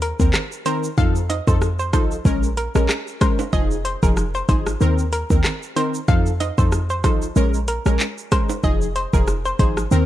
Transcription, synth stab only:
0.20 0.40 D#3 medium
0.20 0.40 C4 medium
0.20 0.40 A#4 medium
0.65 0.89 D#3 medium
0.65 0.89 C4 medium
0.65 0.89 A#4 medium
0.97 1.21 F3 loud
0.97 1.21 D#4 medium
0.97 1.21 A4 loud
1.47 1.68 F3 medium
1.47 1.68 D#4 medium
1.47 1.68 A4 medium
1.93 2.16 F3 medium
1.93 2.16 D#4 medium
1.93 2.17 A4 medium
2.25 2.48 G#3 medium
2.25 2.48 C#4 medium
2.25 2.48 A#4 loud
2.75 2.96 G#3 medium
2.75 2.96 C#4 medium
2.75 2.96 A#4 medium
3.21 3.44 G#3 medium
3.21 3.44 C#4 medium
3.21 3.44 A#4 medium
3.53 3.76 F3 loud
3.53 3.76 D#4 medium
3.53 3.76 G#4 loud
4.03 4.23 F3 medium
4.03 4.23 D#4 medium
4.03 4.24 G#4 medium
4.49 4.72 F3 medium
4.49 4.72 D#4 medium
4.49 4.72 G#4 medium
4.81 5.04 D#3 medium
4.81 5.04 C4 medium
4.81 5.04 A#4 loud
5.30 5.51 D#3 medium
5.30 5.51 C4 medium
5.30 5.51 A#4 medium
5.76 5.99 D#3 medium
5.76 5.99 C4 medium
5.76 6.00 A#4 medium
6.08 6.31 F3 loud
6.08 6.31 D#4 medium
6.08 6.31 A4 loud
6.58 6.79 F3 medium
6.58 6.79 D#4 medium
6.58 6.79 A4 medium
7.04 7.27 F3 medium
7.04 7.27 D#4 medium
7.04 7.27 A4 medium
7.36 7.59 G#3 medium
7.36 7.59 C#4 medium
7.36 7.59 A#4 loud
7.86 8.06 G#3 medium
7.86 8.06 C#4 medium
7.86 8.06 A#4 medium
8.31 8.55 G#3 medium
8.31 8.55 C#4 medium
8.31 8.55 A#4 medium
8.63 8.86 F3 medium
8.63 8.87 D#4 medium
8.63 8.87 G#4 loud
9.13 9.34 F3 medium
9.13 9.34 D#4 medium
9.13 9.34 G#4 medium
9.59 9.82 F3 medium
9.59 9.82 D#4 medium
9.59 9.83 G#4 medium
9.91 10.06 D#3 medium
9.91 10.06 C4 medium
9.91 10.06 A#4 loud

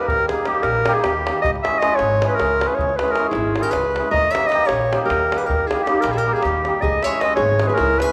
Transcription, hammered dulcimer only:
0.00 0.29 G3 medium
0.30 0.45 G3 medium
0.30 0.41 A#3 medium
0.30 0.41 D#4 medium
0.30 0.41 G4 medium
0.46 0.86 G3 medium
0.46 0.58 A#3 medium
0.46 0.58 D#4 medium
0.46 0.58 G4 medium
0.87 1.26 G3 medium
0.87 0.98 A#3 medium
0.87 0.99 D#4 medium
0.87 0.99 G4 medium
1.28 1.50 G3 medium
1.28 1.39 A#3 medium
1.28 1.39 D#4 medium
1.28 1.39 G4 medium
1.64 1.81 G#3 medium
1.64 1.76 C#4 medium
1.64 1.76 E4 medium
1.64 1.77 G#4 medium
1.82 2.21 G#3 medium
1.82 1.93 C#4 medium
1.82 1.93 E4 medium
1.82 1.94 G#4 medium
2.23 2.63 G#3 medium
2.23 2.34 C#4 medium
2.23 2.34 E4 medium
2.23 2.34 G#4 medium
2.64 3.01 G#3 medium
2.64 2.74 C#4 medium
2.64 2.75 E4 medium
2.64 2.75 G#4 medium
3.02 3.17 G#3 medium
3.02 3.12 C#4 medium
3.02 3.13 E4 medium
3.02 3.13 G#4 medium
3.18 3.57 G#3 medium
3.18 3.29 C#4 medium
3.18 3.29 E4 medium
3.18 3.29 G#4 medium
3.58 3.98 G#3 medium
3.58 3.69 C#4 medium
3.58 3.70 E4 medium
3.58 3.70 G#4 medium
3.98 4.20 G#3 medium
3.98 4.09 C#4 medium
3.98 4.10 E4 medium
3.98 4.10 G#4 medium
4.36 4.51 G3 medium
4.36 4.47 A#3 medium
4.36 4.47 D#4 medium
4.36 4.47 G4 medium
4.53 4.92 G3 medium
4.53 4.64 A#3 medium
4.53 4.64 D#4 medium
4.53 4.64 G4 medium
4.93 5.32 G3 medium
4.93 5.04 A#3 medium
4.93 5.04 D#4 medium
4.93 5.05 G4 medium
5.33 5.69 G3 medium
5.33 5.44 A#3 medium
5.33 5.45 D#4 medium
5.33 5.45 G4 medium
5.71 5.86 G3 medium
5.71 5.82 A#3 medium
5.71 5.82 D#4 medium
5.71 5.82 G4 medium
5.88 6.25 G3 medium
5.88 5.99 A#3 medium
5.88 5.99 D#4 medium
5.88 5.99 G4 medium
6.26 6.65 G3 medium
6.26 6.38 A#3 medium
6.26 6.38 D#4 medium
6.26 6.39 G4 medium
6.66 6.90 G3 medium
6.66 6.78 A#3 medium
6.66 6.79 D#4 medium
6.66 6.79 G4 medium
7.05 7.22 G#3 medium
7.05 7.16 C#4 medium
7.05 7.16 E4 medium
7.05 7.17 G#4 medium
7.23 7.61 G#3 medium
7.23 7.34 C#4 medium
7.23 7.34 E4 medium
7.23 7.34 G#4 medium
7.62 8.01 G#3 medium
7.62 7.73 C#4 medium
7.62 7.73 E4 medium
7.62 7.73 G#4 medium
8.02 8.12 G#3 medium
8.02 8.12 C#4 medium
8.02 8.12 E4 medium
8.02 8.12 G#4 medium

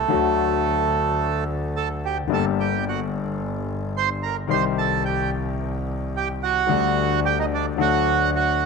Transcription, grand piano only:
0.08 2.19 D2 medium
0.08 2.19 D3 medium
0.08 2.19 F#3 soft
0.08 2.20 A3 soft
0.12 2.20 F#4 medium
2.27 4.39 G1 medium
2.27 4.39 G2 medium
2.27 4.38 D3 medium
2.27 4.38 G3 soft
2.27 4.39 A#3 soft
2.32 4.40 G4 medium
4.47 6.57 C2 medium
4.47 6.57 C3 medium
4.47 6.56 D#3 medium
4.47 6.57 G3 soft
4.47 6.57 C4 soft
4.47 6.58 G4 medium
6.67 7.73 D2 medium
6.67 7.72 D3 medium
6.67 7.71 G3 medium
6.67 7.72 A3 soft
6.67 7.73 D4 medium
6.71 7.74 A4 medium
7.76 8.66 D2 medium
7.76 8.66 D3 medium
7.76 8.66 F#3 soft
7.76 8.66 A3 soft
7.76 8.66 D4 soft
7.76 8.66 A4 medium

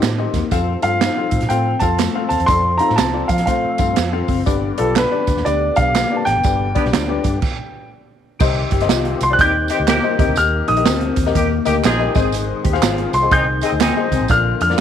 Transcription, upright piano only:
0.18 0.42 C4 medium
0.18 0.42 D#4 medium
0.18 0.42 G4 medium
0.18 0.42 D#5 medium
0.52 0.72 C4 medium
0.52 0.72 F4 medium
0.52 0.72 A4 medium
0.52 0.72 F5 medium
0.83 1.01 C4 medium
0.83 1.01 F4 medium
0.83 1.01 A4 medium
0.83 1.00 F5 medium
1.17 1.41 C4 medium
1.17 1.41 F4 medium
1.17 1.41 A4 medium
1.17 1.41 F5 medium
1.50 1.71 C4 medium
1.50 1.71 F4 medium
1.50 1.71 A4 medium
1.50 1.71 F5 medium
1.82 2.00 C4 medium
1.82 2.00 F4 medium
1.82 2.00 A4 medium
1.82 2.00 F5 medium
2.15 2.40 C4 medium
2.15 2.40 F4 medium
2.15 2.40 A4 medium
2.15 2.40 F5 medium
2.49 2.70 C4 medium
2.49 2.70 F4 medium
2.49 2.70 A4 medium
2.49 2.70 D5 medium
2.80 2.98 C4 medium
2.80 2.98 F4 medium
2.80 2.98 A4 medium
2.80 2.98 F5 medium
3.14 3.38 C4 medium
3.14 3.38 F4 medium
3.14 3.38 A4 medium
3.14 3.38 D5 medium
3.48 3.68 C4 medium
3.48 3.68 F4 medium
3.48 3.68 A4 medium
3.48 3.68 C5 medium
3.79 3.97 C4 medium
3.79 3.97 F4 medium
3.79 3.97 A4 medium
3.79 3.97 F5 medium
4.13 4.37 C4 medium
4.13 4.37 F4 medium
4.13 4.37 A4 medium
4.13 4.37 F5 medium
4.46 5.23 G2 medium
4.46 4.67 B3 medium
4.46 4.67 D4 medium
4.46 4.67 G4 medium
4.46 4.67 D5 medium
4.78 4.96 B3 medium
4.78 4.96 D4 medium
4.78 4.96 G4 medium
4.78 4.96 D5 medium
5.12 5.36 B3 medium
5.12 5.36 D4 medium
5.12 5.36 G4 medium
5.12 5.36 D5 medium
5.45 5.66 B3 medium
5.45 5.66 D4 medium
5.45 5.66 G4 medium
5.45 5.66 D5 medium
5.76 5.94 B3 medium
5.76 5.95 D4 medium
5.76 5.95 G4 medium
5.76 5.94 D5 medium
6.11 6.35 B3 medium
6.11 6.35 D4 medium
6.11 6.35 G4 medium
6.11 6.35 D5 medium
6.44 7.21 G2 medium
6.44 6.65 B3 medium
6.44 6.65 D4 medium
6.44 6.65 G4 medium
6.44 6.65 D5 medium
6.75 6.93 B3 medium
6.75 6.93 D4 medium
6.75 6.93 G4 medium
6.75 6.93 D5 medium
7.09 7.33 B3 medium
7.09 7.33 D4 medium
7.09 7.33 G4 medium
7.09 7.33 D5 medium
8.41 9.17 C3 medium
8.41 8.71 G4 medium
8.41 8.71 C5 medium
8.41 8.71 D#5 loud
8.81 9.15 G4 medium
8.81 9.15 C5 medium
8.81 9.15 D#5 loud
9.30 9.54 G4 medium
9.30 9.54 C5 medium
9.30 9.54 D5 medium
9.70 9.88 G4 medium
9.70 9.88 C5 medium
9.70 9.88 D#5 medium
10.04 10.18 G4 medium
10.04 10.19 C5 medium
10.04 10.18 D#5 loud
10.19 10.83 D#3 medium
10.19 10.69 G4 loud
10.19 10.68 A#4 medium
10.19 10.69 D#5 loud
10.77 11.11 G4 medium
10.77 11.11 A#4 medium
10.77 11.11 D#5 medium
11.26 11.50 G4 medium
11.26 11.50 A#4 medium
11.26 11.50 D#5 loud
11.65 11.84 G4 loud
11.65 11.84 A#4 medium
11.65 11.84 D#5 loud
11.99 12.15 G4 medium
11.99 12.15 A#4 medium
11.99 12.14 D#5 medium
12.15 12.79 G#2 medium
12.15 12.65 G#4 medium
12.15 12.65 C5 medium
12.15 12.65 D#5 loud
12.73 13.07 G#4 medium
12.73 13.07 C5 medium
12.73 13.07 F5 medium
13.22 13.46 G#4 medium
13.22 13.46 C5 medium
13.22 13.46 D#5 medium
13.63 13.80 G#4 medium
13.63 13.80 C5 medium
13.63 13.80 D#5 medium
13.96 14.20 G#4 medium
13.96 14.20 C5 medium
13.96 14.20 D#5 medium
14.30 14.80 A#2 medium
14.30 14.60 F4 medium
14.30 14.60 A#4 medium
14.30 14.60 D5 medium
14.70 14.80 F4 medium
14.70 14.80 A#4 medium
14.70 14.80 D5 medium

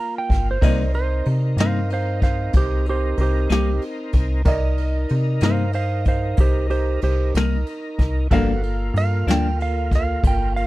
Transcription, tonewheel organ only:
0.00 0.58 A#3 medium
0.00 0.59 F4 medium
0.61 4.42 C4 medium
0.61 4.42 D#4 medium
0.61 4.42 A#4 medium
4.47 8.28 D#4 medium
4.47 8.27 A#4 medium
8.30 8.62 A#3 medium
8.30 8.63 B3 medium
8.30 8.63 F#4 medium
8.63 10.67 A#3 medium
8.63 10.67 F4 medium

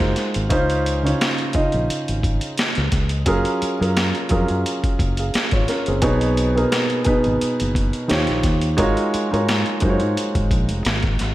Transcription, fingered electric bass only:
0.01 0.15 F#1 medium
0.36 0.49 G#1 medium
0.52 1.12 C#2 medium
1.56 muted fingered electric bass stroke soft
1.74 1.87 A#1 medium
1.90 muted fingered electric bass stroke soft
2.09 2.39 G#1 medium
2.78 2.91 C#2 medium
2.93 3.23 C#2 medium
3.27 3.44 F#1 medium
3.62 muted fingered electric bass stroke soft
3.81 4.11 F#2 medium
4.32 4.48 F2 medium
4.50 4.63 F#2 medium
5.00 5.30 F#1 medium
5.35 muted fingered electric bass stroke soft
5.53 5.66 G#1 medium
5.88 6.03 F#1 medium
6.03 6.64 B1 medium
7.07 muted fingered electric bass stroke soft
7.26 7.39 G#1 medium
7.42 muted fingered electric bass stroke soft
7.61 7.91 F#1 medium
8.11 8.27 D#2 medium
8.29 8.42 A#1 medium
8.45 8.75 D#2 medium
8.79 8.95 G#1 medium
9.14 muted fingered electric bass stroke soft
9.33 9.63 G#2 medium
9.83 9.99 F#2 medium
10.02 10.15 G#2 medium
10.36 10.49 G#1 medium
10.52 10.68 A#1 medium
10.71 10.84 F1 medium
10.86 11.16 G#1 medium
11.21 11.35 G#1 medium

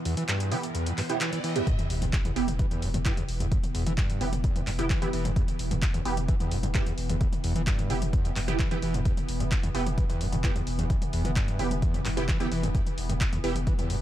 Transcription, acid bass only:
0.05 0.15 E2 loud
0.17 0.23 E3 medium
0.28 0.53 G2 medium
0.51 0.55 E3 medium
0.75 0.88 E2 medium
0.86 0.93 F2 medium
0.98 1.02 G2 medium
1.21 1.30 E3 loud
1.32 1.39 E3 loud
1.44 1.57 E3 medium
1.56 1.62 E2 medium
1.67 1.73 E2 loud
2.02 2.06 G2 medium
2.25 2.31 E2 loud
2.59 2.66 E3 medium
2.71 2.84 E2 medium
2.82 2.89 G2 medium
2.94 2.98 G2 medium
3.05 3.12 G2 medium
3.17 3.23 E2 loud
3.40 3.46 E2 loud
3.52 3.58 E2 medium
3.75 3.84 E2 loud
3.86 3.93 E3 medium
3.98 4.22 G2 medium
4.21 4.25 E3 medium
4.44 4.57 E2 medium
4.56 4.62 F2 medium
4.67 4.71 G2 medium
4.90 5.00 E3 loud
5.02 5.08 E3 loud
5.13 5.26 E3 medium
5.25 5.31 E2 medium
5.36 5.43 E2 loud
5.71 5.75 G2 medium
5.94 6.00 E2 loud
6.28 6.35 E3 medium
6.40 6.53 E2 medium
6.52 6.58 G2 medium
6.63 6.67 G2 medium
6.75 6.81 G2 medium
6.86 6.93 E2 loud
7.10 7.16 E2 loud
7.21 7.27 E2 medium
7.44 7.54 E2 loud
7.56 7.62 E3 medium
7.67 7.91 G2 medium
7.90 7.94 E3 medium
8.13 8.26 E2 medium
8.25 8.31 F2 medium
8.36 8.40 G2 medium
8.59 8.69 E3 loud
8.71 8.77 E3 loud
8.82 8.96 E3 medium
8.94 9.00 E2 medium
9.05 9.12 E2 loud
9.40 9.44 G2 medium
9.63 9.70 E2 loud
9.98 10.04 E3 medium
10.09 10.22 E2 medium
10.21 10.27 G2 medium
10.33 10.36 G2 medium
10.44 10.50 G2 medium
10.56 10.62 E2 loud
10.79 10.85 E2 loud
10.90 10.97 E2 medium
11.13 11.23 E2 loud
11.25 11.31 E3 medium
11.36 11.61 G2 medium
11.59 11.63 E3 medium
11.82 11.96 E2 medium
11.94 12.00 F2 medium
12.05 12.09 G2 medium
12.28 12.38 E3 loud
12.40 12.46 E3 loud
12.52 12.65 E3 medium
12.63 12.70 E2 medium
12.75 12.81 E2 loud
13.10 13.13 G2 medium
13.33 13.39 E2 loud
13.67 13.73 E3 medium
13.79 13.91 E2 medium
13.90 13.96 G2 medium

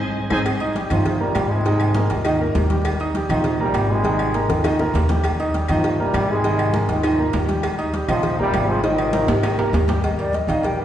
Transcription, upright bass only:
0.31 0.42 G#1 medium
0.91 1.32 G2 medium
1.35 2.04 G#2 medium
2.10 2.52 D#2 medium
2.54 3.24 D#2 medium
3.29 3.71 A#1 loud
3.74 4.44 G#1 loud
4.49 4.91 D#2 medium
4.94 5.63 D#2 medium
5.69 6.11 G2 medium
6.14 6.83 G#2 medium
6.88 7.30 D#2 medium
7.33 8.03 D#2 medium
8.08 8.50 A#1 medium
8.54 9.23 G#1 loud
9.28 9.70 G#2 medium
9.73 10.42 D#2 loud
10.47 10.85 A#1 medium

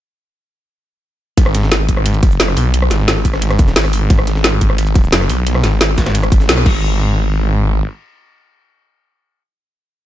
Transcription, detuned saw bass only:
1.38 1.87 G#1 loud
1.89 2.38 G#1 loud
2.40 2.55 F#1 loud
2.57 2.90 B1 loud
2.91 3.24 G#1 medium
3.25 3.75 G#1 loud
3.76 4.09 G#1 loud
4.10 4.60 G#1 loud
4.61 5.11 G#1 loud
5.13 5.28 F#1 loud
5.30 5.62 B1 loud
5.64 5.96 G#1 loud
5.98 6.48 G#1 loud
6.49 6.65 B1 loud
6.66 7.81 G#1 loud

